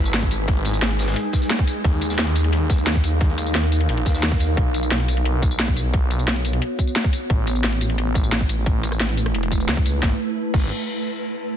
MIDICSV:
0, 0, Header, 1, 5, 480
1, 0, Start_track
1, 0, Tempo, 340909
1, 677, Time_signature, 4, 2, 24, 8
1, 16288, End_track
2, 0, Start_track
2, 0, Title_t, "Synth drone"
2, 0, Program_c, 0, 95
2, 0, Note_on_c, 0, 56, 84
2, 0, Note_on_c, 0, 63, 82
2, 0, Note_on_c, 0, 68, 94
2, 2559, Note_off_c, 0, 56, 0
2, 2559, Note_off_c, 0, 63, 0
2, 2559, Note_off_c, 0, 68, 0
2, 2597, Note_on_c, 0, 63, 86
2, 2597, Note_on_c, 0, 70, 79
2, 2597, Note_on_c, 0, 77, 98
2, 6399, Note_off_c, 0, 63, 0
2, 6399, Note_off_c, 0, 70, 0
2, 6399, Note_off_c, 0, 77, 0
2, 6438, Note_on_c, 0, 73, 95
2, 6439, Note_on_c, 0, 59, 88
2, 6439, Note_on_c, 0, 66, 80
2, 10240, Note_off_c, 0, 59, 0
2, 10240, Note_off_c, 0, 66, 0
2, 10240, Note_off_c, 0, 73, 0
2, 10278, Note_on_c, 0, 57, 87
2, 10279, Note_on_c, 0, 64, 80
2, 10279, Note_on_c, 0, 71, 98
2, 14080, Note_off_c, 0, 57, 0
2, 14080, Note_off_c, 0, 64, 0
2, 14080, Note_off_c, 0, 71, 0
2, 16288, End_track
3, 0, Start_track
3, 0, Title_t, "Detuned saw bass"
3, 0, Program_c, 1, 39
3, 0, Note_on_c, 1, 32, 96
3, 1138, Note_off_c, 1, 32, 0
3, 1157, Note_on_c, 1, 32, 97
3, 1618, Note_off_c, 1, 32, 0
3, 2597, Note_on_c, 1, 39, 96
3, 3058, Note_off_c, 1, 39, 0
3, 3077, Note_on_c, 1, 39, 100
3, 4978, Note_off_c, 1, 39, 0
3, 4998, Note_on_c, 1, 39, 98
3, 5459, Note_off_c, 1, 39, 0
3, 5478, Note_on_c, 1, 34, 99
3, 5699, Note_off_c, 1, 34, 0
3, 5718, Note_on_c, 1, 39, 98
3, 6419, Note_off_c, 1, 39, 0
3, 6437, Note_on_c, 1, 35, 95
3, 6898, Note_off_c, 1, 35, 0
3, 6917, Note_on_c, 1, 35, 96
3, 8818, Note_off_c, 1, 35, 0
3, 8838, Note_on_c, 1, 35, 101
3, 9298, Note_off_c, 1, 35, 0
3, 10278, Note_on_c, 1, 33, 94
3, 10738, Note_off_c, 1, 33, 0
3, 10757, Note_on_c, 1, 33, 96
3, 12658, Note_off_c, 1, 33, 0
3, 12678, Note_on_c, 1, 33, 94
3, 13139, Note_off_c, 1, 33, 0
3, 13158, Note_on_c, 1, 28, 99
3, 13619, Note_off_c, 1, 28, 0
3, 13638, Note_on_c, 1, 37, 98
3, 13859, Note_off_c, 1, 37, 0
3, 13879, Note_on_c, 1, 37, 96
3, 14099, Note_off_c, 1, 37, 0
3, 14118, Note_on_c, 1, 32, 97
3, 14252, Note_off_c, 1, 32, 0
3, 14838, Note_on_c, 1, 32, 101
3, 15061, Note_off_c, 1, 32, 0
3, 16288, End_track
4, 0, Start_track
4, 0, Title_t, "Impact"
4, 0, Program_c, 2, 103
4, 0, Note_on_c, 2, 60, 73
4, 678, Note_off_c, 2, 60, 0
4, 16288, End_track
5, 0, Start_track
5, 0, Title_t, "Drums"
5, 78, Note_on_c, 9, 54, 28
5, 191, Note_on_c, 9, 42, 91
5, 198, Note_off_c, 9, 42, 0
5, 198, Note_on_c, 9, 38, 114
5, 198, Note_on_c, 9, 42, 96
5, 209, Note_off_c, 9, 38, 0
5, 209, Note_on_c, 9, 38, 120
5, 219, Note_off_c, 9, 54, 0
5, 317, Note_on_c, 9, 36, 59
5, 318, Note_off_c, 9, 42, 0
5, 318, Note_on_c, 9, 42, 39
5, 327, Note_off_c, 9, 38, 0
5, 327, Note_on_c, 9, 38, 39
5, 437, Note_off_c, 9, 42, 0
5, 437, Note_on_c, 9, 42, 68
5, 437, Note_on_c, 9, 54, 60
5, 450, Note_off_c, 9, 42, 0
5, 450, Note_on_c, 9, 42, 64
5, 458, Note_off_c, 9, 36, 0
5, 468, Note_off_c, 9, 38, 0
5, 578, Note_off_c, 9, 54, 0
5, 591, Note_off_c, 9, 42, 0
5, 677, Note_on_c, 9, 36, 127
5, 677, Note_on_c, 9, 42, 93
5, 678, Note_off_c, 9, 42, 0
5, 678, Note_on_c, 9, 42, 85
5, 798, Note_off_c, 9, 42, 0
5, 798, Note_on_c, 9, 42, 45
5, 818, Note_off_c, 9, 36, 0
5, 909, Note_off_c, 9, 42, 0
5, 909, Note_on_c, 9, 42, 63
5, 917, Note_off_c, 9, 42, 0
5, 917, Note_on_c, 9, 42, 65
5, 917, Note_on_c, 9, 54, 58
5, 1038, Note_off_c, 9, 54, 0
5, 1038, Note_on_c, 9, 54, 27
5, 1058, Note_off_c, 9, 42, 0
5, 1156, Note_on_c, 9, 42, 83
5, 1157, Note_off_c, 9, 42, 0
5, 1157, Note_on_c, 9, 38, 123
5, 1157, Note_on_c, 9, 42, 94
5, 1167, Note_off_c, 9, 38, 0
5, 1167, Note_on_c, 9, 38, 120
5, 1178, Note_off_c, 9, 54, 0
5, 1277, Note_off_c, 9, 42, 0
5, 1277, Note_on_c, 9, 42, 36
5, 1308, Note_off_c, 9, 38, 0
5, 1397, Note_off_c, 9, 42, 0
5, 1397, Note_on_c, 9, 42, 63
5, 1397, Note_on_c, 9, 54, 55
5, 1401, Note_off_c, 9, 42, 0
5, 1401, Note_on_c, 9, 42, 72
5, 1407, Note_on_c, 9, 38, 96
5, 1456, Note_off_c, 9, 38, 0
5, 1456, Note_on_c, 9, 38, 92
5, 1465, Note_off_c, 9, 42, 0
5, 1465, Note_on_c, 9, 42, 66
5, 1517, Note_off_c, 9, 42, 0
5, 1517, Note_on_c, 9, 42, 36
5, 1519, Note_off_c, 9, 38, 0
5, 1519, Note_on_c, 9, 38, 94
5, 1524, Note_off_c, 9, 42, 0
5, 1524, Note_on_c, 9, 42, 72
5, 1538, Note_off_c, 9, 54, 0
5, 1572, Note_off_c, 9, 42, 0
5, 1572, Note_on_c, 9, 42, 65
5, 1586, Note_off_c, 9, 38, 0
5, 1586, Note_on_c, 9, 38, 93
5, 1637, Note_off_c, 9, 42, 0
5, 1637, Note_on_c, 9, 42, 97
5, 1639, Note_off_c, 9, 42, 0
5, 1639, Note_on_c, 9, 42, 86
5, 1727, Note_off_c, 9, 38, 0
5, 1780, Note_off_c, 9, 42, 0
5, 1871, Note_on_c, 9, 38, 62
5, 1871, Note_on_c, 9, 42, 73
5, 1877, Note_off_c, 9, 42, 0
5, 1877, Note_on_c, 9, 36, 62
5, 1877, Note_on_c, 9, 42, 64
5, 1877, Note_on_c, 9, 54, 57
5, 1995, Note_off_c, 9, 38, 0
5, 1995, Note_on_c, 9, 38, 42
5, 1998, Note_off_c, 9, 54, 0
5, 1998, Note_on_c, 9, 54, 26
5, 2018, Note_off_c, 9, 36, 0
5, 2018, Note_off_c, 9, 42, 0
5, 2114, Note_off_c, 9, 38, 0
5, 2114, Note_on_c, 9, 38, 112
5, 2117, Note_off_c, 9, 38, 0
5, 2117, Note_on_c, 9, 38, 117
5, 2117, Note_on_c, 9, 42, 92
5, 2118, Note_on_c, 9, 46, 77
5, 2138, Note_off_c, 9, 54, 0
5, 2234, Note_off_c, 9, 38, 0
5, 2234, Note_on_c, 9, 38, 50
5, 2237, Note_off_c, 9, 42, 0
5, 2237, Note_on_c, 9, 36, 109
5, 2237, Note_on_c, 9, 42, 38
5, 2259, Note_off_c, 9, 46, 0
5, 2355, Note_off_c, 9, 42, 0
5, 2355, Note_on_c, 9, 42, 67
5, 2356, Note_off_c, 9, 38, 0
5, 2356, Note_on_c, 9, 38, 41
5, 2357, Note_off_c, 9, 42, 0
5, 2357, Note_on_c, 9, 42, 65
5, 2357, Note_on_c, 9, 54, 54
5, 2378, Note_off_c, 9, 36, 0
5, 2497, Note_off_c, 9, 38, 0
5, 2498, Note_off_c, 9, 42, 0
5, 2498, Note_off_c, 9, 54, 0
5, 2597, Note_on_c, 9, 36, 125
5, 2598, Note_on_c, 9, 42, 89
5, 2603, Note_off_c, 9, 42, 0
5, 2603, Note_on_c, 9, 42, 84
5, 2738, Note_off_c, 9, 36, 0
5, 2744, Note_off_c, 9, 42, 0
5, 2834, Note_on_c, 9, 42, 67
5, 2838, Note_off_c, 9, 42, 0
5, 2838, Note_on_c, 9, 42, 64
5, 2838, Note_on_c, 9, 54, 56
5, 2952, Note_on_c, 9, 38, 49
5, 2958, Note_off_c, 9, 54, 0
5, 2958, Note_on_c, 9, 54, 25
5, 2979, Note_off_c, 9, 42, 0
5, 3078, Note_off_c, 9, 38, 0
5, 3078, Note_on_c, 9, 38, 127
5, 3078, Note_on_c, 9, 42, 90
5, 3083, Note_off_c, 9, 38, 0
5, 3083, Note_on_c, 9, 38, 125
5, 3084, Note_off_c, 9, 42, 0
5, 3084, Note_on_c, 9, 42, 82
5, 3099, Note_off_c, 9, 54, 0
5, 3198, Note_off_c, 9, 42, 0
5, 3198, Note_on_c, 9, 42, 36
5, 3223, Note_off_c, 9, 38, 0
5, 3318, Note_off_c, 9, 42, 0
5, 3318, Note_on_c, 9, 42, 62
5, 3318, Note_on_c, 9, 54, 57
5, 3324, Note_off_c, 9, 42, 0
5, 3324, Note_on_c, 9, 42, 71
5, 3438, Note_off_c, 9, 42, 0
5, 3438, Note_on_c, 9, 42, 36
5, 3459, Note_off_c, 9, 54, 0
5, 3558, Note_off_c, 9, 42, 0
5, 3558, Note_on_c, 9, 42, 79
5, 3699, Note_off_c, 9, 42, 0
5, 3798, Note_on_c, 9, 36, 112
5, 3798, Note_on_c, 9, 38, 53
5, 3798, Note_on_c, 9, 42, 65
5, 3798, Note_on_c, 9, 54, 56
5, 3799, Note_off_c, 9, 42, 0
5, 3799, Note_on_c, 9, 42, 72
5, 3918, Note_off_c, 9, 54, 0
5, 3918, Note_on_c, 9, 54, 27
5, 3938, Note_off_c, 9, 36, 0
5, 3939, Note_off_c, 9, 38, 0
5, 3940, Note_off_c, 9, 42, 0
5, 4033, Note_on_c, 9, 38, 127
5, 4037, Note_off_c, 9, 38, 0
5, 4037, Note_on_c, 9, 38, 121
5, 4037, Note_on_c, 9, 42, 89
5, 4049, Note_off_c, 9, 42, 0
5, 4049, Note_on_c, 9, 42, 90
5, 4059, Note_off_c, 9, 54, 0
5, 4157, Note_off_c, 9, 38, 0
5, 4157, Note_off_c, 9, 42, 0
5, 4157, Note_on_c, 9, 38, 34
5, 4157, Note_on_c, 9, 42, 38
5, 4158, Note_on_c, 9, 36, 60
5, 4278, Note_off_c, 9, 42, 0
5, 4278, Note_on_c, 9, 42, 65
5, 4278, Note_on_c, 9, 54, 58
5, 4282, Note_off_c, 9, 42, 0
5, 4282, Note_on_c, 9, 42, 69
5, 4298, Note_off_c, 9, 36, 0
5, 4298, Note_off_c, 9, 38, 0
5, 4418, Note_off_c, 9, 54, 0
5, 4422, Note_off_c, 9, 42, 0
5, 4518, Note_on_c, 9, 36, 120
5, 4518, Note_on_c, 9, 42, 83
5, 4520, Note_off_c, 9, 42, 0
5, 4520, Note_on_c, 9, 42, 93
5, 4639, Note_off_c, 9, 42, 0
5, 4639, Note_on_c, 9, 42, 41
5, 4658, Note_off_c, 9, 36, 0
5, 4753, Note_off_c, 9, 42, 0
5, 4753, Note_on_c, 9, 42, 64
5, 4758, Note_off_c, 9, 42, 0
5, 4758, Note_on_c, 9, 37, 33
5, 4758, Note_on_c, 9, 42, 64
5, 4758, Note_on_c, 9, 54, 55
5, 4878, Note_off_c, 9, 54, 0
5, 4878, Note_on_c, 9, 54, 26
5, 4899, Note_off_c, 9, 37, 0
5, 4899, Note_off_c, 9, 42, 0
5, 4992, Note_on_c, 9, 42, 95
5, 4997, Note_off_c, 9, 42, 0
5, 4997, Note_on_c, 9, 38, 125
5, 4997, Note_on_c, 9, 42, 89
5, 5006, Note_off_c, 9, 38, 0
5, 5006, Note_on_c, 9, 38, 107
5, 5018, Note_off_c, 9, 54, 0
5, 5118, Note_off_c, 9, 42, 0
5, 5118, Note_on_c, 9, 42, 35
5, 5147, Note_off_c, 9, 38, 0
5, 5237, Note_off_c, 9, 42, 0
5, 5237, Note_on_c, 9, 42, 61
5, 5237, Note_on_c, 9, 54, 56
5, 5241, Note_off_c, 9, 42, 0
5, 5241, Note_on_c, 9, 42, 72
5, 5357, Note_off_c, 9, 42, 0
5, 5357, Note_on_c, 9, 42, 36
5, 5378, Note_off_c, 9, 54, 0
5, 5477, Note_off_c, 9, 42, 0
5, 5477, Note_on_c, 9, 42, 85
5, 5483, Note_off_c, 9, 42, 0
5, 5483, Note_on_c, 9, 42, 87
5, 5597, Note_off_c, 9, 42, 0
5, 5597, Note_on_c, 9, 42, 37
5, 5710, Note_off_c, 9, 42, 0
5, 5710, Note_on_c, 9, 42, 64
5, 5717, Note_off_c, 9, 42, 0
5, 5717, Note_on_c, 9, 36, 63
5, 5717, Note_on_c, 9, 42, 62
5, 5717, Note_on_c, 9, 54, 56
5, 5725, Note_on_c, 9, 38, 54
5, 5838, Note_off_c, 9, 54, 0
5, 5838, Note_on_c, 9, 54, 27
5, 5844, Note_off_c, 9, 38, 0
5, 5844, Note_on_c, 9, 38, 43
5, 5858, Note_off_c, 9, 36, 0
5, 5858, Note_off_c, 9, 42, 0
5, 5955, Note_off_c, 9, 38, 0
5, 5955, Note_on_c, 9, 38, 118
5, 5956, Note_on_c, 9, 46, 85
5, 5958, Note_off_c, 9, 38, 0
5, 5958, Note_on_c, 9, 38, 124
5, 5958, Note_on_c, 9, 42, 90
5, 5979, Note_off_c, 9, 54, 0
5, 6071, Note_off_c, 9, 38, 0
5, 6071, Note_on_c, 9, 38, 47
5, 6077, Note_on_c, 9, 36, 103
5, 6078, Note_off_c, 9, 42, 0
5, 6078, Note_on_c, 9, 42, 37
5, 6097, Note_off_c, 9, 46, 0
5, 6198, Note_off_c, 9, 42, 0
5, 6198, Note_on_c, 9, 42, 62
5, 6198, Note_on_c, 9, 54, 57
5, 6205, Note_off_c, 9, 38, 0
5, 6205, Note_on_c, 9, 38, 39
5, 6207, Note_off_c, 9, 42, 0
5, 6207, Note_on_c, 9, 42, 73
5, 6218, Note_off_c, 9, 36, 0
5, 6339, Note_off_c, 9, 54, 0
5, 6346, Note_off_c, 9, 38, 0
5, 6348, Note_off_c, 9, 42, 0
5, 6437, Note_on_c, 9, 36, 119
5, 6438, Note_on_c, 9, 42, 89
5, 6578, Note_off_c, 9, 36, 0
5, 6578, Note_off_c, 9, 42, 0
5, 6678, Note_on_c, 9, 42, 62
5, 6678, Note_on_c, 9, 54, 61
5, 6798, Note_off_c, 9, 54, 0
5, 6798, Note_on_c, 9, 54, 27
5, 6819, Note_off_c, 9, 42, 0
5, 6918, Note_on_c, 9, 38, 118
5, 6918, Note_on_c, 9, 42, 91
5, 6939, Note_off_c, 9, 54, 0
5, 7038, Note_off_c, 9, 42, 0
5, 7038, Note_on_c, 9, 42, 36
5, 7059, Note_off_c, 9, 38, 0
5, 7158, Note_off_c, 9, 42, 0
5, 7158, Note_on_c, 9, 42, 63
5, 7158, Note_on_c, 9, 54, 59
5, 7278, Note_off_c, 9, 42, 0
5, 7278, Note_on_c, 9, 42, 35
5, 7299, Note_off_c, 9, 54, 0
5, 7398, Note_off_c, 9, 42, 0
5, 7398, Note_on_c, 9, 42, 88
5, 7539, Note_off_c, 9, 42, 0
5, 7638, Note_on_c, 9, 36, 103
5, 7638, Note_on_c, 9, 42, 64
5, 7638, Note_on_c, 9, 54, 57
5, 7758, Note_off_c, 9, 54, 0
5, 7758, Note_on_c, 9, 54, 28
5, 7778, Note_off_c, 9, 36, 0
5, 7779, Note_off_c, 9, 42, 0
5, 7878, Note_on_c, 9, 38, 121
5, 7878, Note_on_c, 9, 42, 88
5, 7899, Note_off_c, 9, 54, 0
5, 7998, Note_off_c, 9, 42, 0
5, 7998, Note_on_c, 9, 36, 60
5, 7998, Note_on_c, 9, 42, 35
5, 8019, Note_off_c, 9, 38, 0
5, 8118, Note_off_c, 9, 42, 0
5, 8118, Note_on_c, 9, 42, 64
5, 8118, Note_on_c, 9, 54, 59
5, 8138, Note_off_c, 9, 36, 0
5, 8259, Note_off_c, 9, 42, 0
5, 8259, Note_off_c, 9, 54, 0
5, 8357, Note_on_c, 9, 36, 116
5, 8358, Note_on_c, 9, 42, 88
5, 8498, Note_off_c, 9, 36, 0
5, 8499, Note_off_c, 9, 42, 0
5, 8598, Note_on_c, 9, 42, 66
5, 8598, Note_on_c, 9, 54, 60
5, 8719, Note_off_c, 9, 54, 0
5, 8719, Note_on_c, 9, 54, 29
5, 8739, Note_off_c, 9, 42, 0
5, 8838, Note_on_c, 9, 38, 115
5, 8838, Note_on_c, 9, 42, 90
5, 8859, Note_off_c, 9, 54, 0
5, 8958, Note_off_c, 9, 42, 0
5, 8958, Note_on_c, 9, 42, 35
5, 8979, Note_off_c, 9, 38, 0
5, 9078, Note_off_c, 9, 42, 0
5, 9078, Note_on_c, 9, 42, 64
5, 9078, Note_on_c, 9, 54, 58
5, 9198, Note_off_c, 9, 42, 0
5, 9198, Note_on_c, 9, 42, 36
5, 9219, Note_off_c, 9, 54, 0
5, 9318, Note_off_c, 9, 42, 0
5, 9318, Note_on_c, 9, 42, 91
5, 9459, Note_off_c, 9, 42, 0
5, 9557, Note_on_c, 9, 36, 56
5, 9558, Note_on_c, 9, 42, 67
5, 9558, Note_on_c, 9, 54, 62
5, 9678, Note_off_c, 9, 54, 0
5, 9678, Note_on_c, 9, 54, 30
5, 9698, Note_off_c, 9, 36, 0
5, 9699, Note_off_c, 9, 42, 0
5, 9798, Note_on_c, 9, 38, 113
5, 9798, Note_on_c, 9, 42, 93
5, 9819, Note_off_c, 9, 54, 0
5, 9917, Note_on_c, 9, 36, 101
5, 9918, Note_off_c, 9, 42, 0
5, 9918, Note_on_c, 9, 42, 37
5, 9939, Note_off_c, 9, 38, 0
5, 10038, Note_off_c, 9, 42, 0
5, 10038, Note_on_c, 9, 42, 67
5, 10038, Note_on_c, 9, 54, 63
5, 10058, Note_off_c, 9, 36, 0
5, 10179, Note_off_c, 9, 42, 0
5, 10179, Note_off_c, 9, 54, 0
5, 10277, Note_on_c, 9, 36, 113
5, 10278, Note_on_c, 9, 42, 96
5, 10418, Note_off_c, 9, 36, 0
5, 10418, Note_off_c, 9, 42, 0
5, 10518, Note_on_c, 9, 42, 69
5, 10518, Note_on_c, 9, 54, 65
5, 10638, Note_off_c, 9, 54, 0
5, 10638, Note_on_c, 9, 54, 28
5, 10659, Note_off_c, 9, 42, 0
5, 10757, Note_on_c, 9, 38, 115
5, 10757, Note_on_c, 9, 42, 95
5, 10779, Note_off_c, 9, 54, 0
5, 10878, Note_off_c, 9, 42, 0
5, 10878, Note_on_c, 9, 42, 39
5, 10898, Note_off_c, 9, 38, 0
5, 10998, Note_off_c, 9, 42, 0
5, 10998, Note_on_c, 9, 42, 68
5, 10998, Note_on_c, 9, 54, 60
5, 11118, Note_off_c, 9, 42, 0
5, 11118, Note_on_c, 9, 42, 38
5, 11139, Note_off_c, 9, 54, 0
5, 11238, Note_off_c, 9, 42, 0
5, 11238, Note_on_c, 9, 42, 99
5, 11378, Note_off_c, 9, 42, 0
5, 11477, Note_on_c, 9, 36, 101
5, 11478, Note_on_c, 9, 42, 69
5, 11478, Note_on_c, 9, 54, 64
5, 11598, Note_off_c, 9, 54, 0
5, 11598, Note_on_c, 9, 54, 30
5, 11618, Note_off_c, 9, 36, 0
5, 11619, Note_off_c, 9, 42, 0
5, 11718, Note_on_c, 9, 38, 109
5, 11718, Note_on_c, 9, 42, 95
5, 11738, Note_off_c, 9, 54, 0
5, 11837, Note_on_c, 9, 36, 58
5, 11838, Note_off_c, 9, 42, 0
5, 11838, Note_on_c, 9, 42, 38
5, 11858, Note_off_c, 9, 38, 0
5, 11958, Note_off_c, 9, 42, 0
5, 11958, Note_on_c, 9, 42, 67
5, 11958, Note_on_c, 9, 54, 61
5, 11978, Note_off_c, 9, 36, 0
5, 12098, Note_off_c, 9, 42, 0
5, 12098, Note_off_c, 9, 54, 0
5, 12198, Note_on_c, 9, 36, 117
5, 12198, Note_on_c, 9, 42, 98
5, 12338, Note_off_c, 9, 36, 0
5, 12339, Note_off_c, 9, 42, 0
5, 12438, Note_on_c, 9, 37, 35
5, 12438, Note_on_c, 9, 42, 69
5, 12438, Note_on_c, 9, 54, 63
5, 12558, Note_off_c, 9, 37, 0
5, 12558, Note_off_c, 9, 54, 0
5, 12558, Note_on_c, 9, 37, 53
5, 12558, Note_on_c, 9, 54, 29
5, 12579, Note_off_c, 9, 42, 0
5, 12677, Note_on_c, 9, 38, 118
5, 12677, Note_on_c, 9, 42, 98
5, 12699, Note_off_c, 9, 37, 0
5, 12699, Note_off_c, 9, 54, 0
5, 12798, Note_off_c, 9, 42, 0
5, 12798, Note_on_c, 9, 42, 41
5, 12818, Note_off_c, 9, 38, 0
5, 12918, Note_off_c, 9, 42, 0
5, 12918, Note_on_c, 9, 42, 69
5, 12918, Note_on_c, 9, 54, 61
5, 13038, Note_off_c, 9, 42, 0
5, 13038, Note_on_c, 9, 37, 56
5, 13038, Note_on_c, 9, 42, 39
5, 13059, Note_off_c, 9, 54, 0
5, 13158, Note_off_c, 9, 42, 0
5, 13158, Note_on_c, 9, 42, 97
5, 13179, Note_off_c, 9, 37, 0
5, 13279, Note_off_c, 9, 42, 0
5, 13279, Note_on_c, 9, 42, 41
5, 13398, Note_off_c, 9, 42, 0
5, 13398, Note_on_c, 9, 36, 59
5, 13398, Note_on_c, 9, 42, 70
5, 13398, Note_on_c, 9, 54, 63
5, 13518, Note_off_c, 9, 54, 0
5, 13518, Note_on_c, 9, 54, 29
5, 13539, Note_off_c, 9, 36, 0
5, 13539, Note_off_c, 9, 42, 0
5, 13638, Note_on_c, 9, 38, 111
5, 13638, Note_on_c, 9, 42, 96
5, 13659, Note_off_c, 9, 54, 0
5, 13758, Note_on_c, 9, 36, 99
5, 13759, Note_off_c, 9, 42, 0
5, 13759, Note_on_c, 9, 42, 39
5, 13779, Note_off_c, 9, 38, 0
5, 13879, Note_off_c, 9, 42, 0
5, 13879, Note_on_c, 9, 42, 69
5, 13879, Note_on_c, 9, 54, 60
5, 13899, Note_off_c, 9, 36, 0
5, 14020, Note_off_c, 9, 42, 0
5, 14020, Note_off_c, 9, 54, 0
5, 14118, Note_on_c, 9, 36, 116
5, 14119, Note_on_c, 9, 38, 86
5, 14259, Note_off_c, 9, 36, 0
5, 14260, Note_off_c, 9, 38, 0
5, 14838, Note_on_c, 9, 36, 118
5, 14838, Note_on_c, 9, 49, 80
5, 14979, Note_off_c, 9, 36, 0
5, 14979, Note_off_c, 9, 49, 0
5, 16288, End_track
0, 0, End_of_file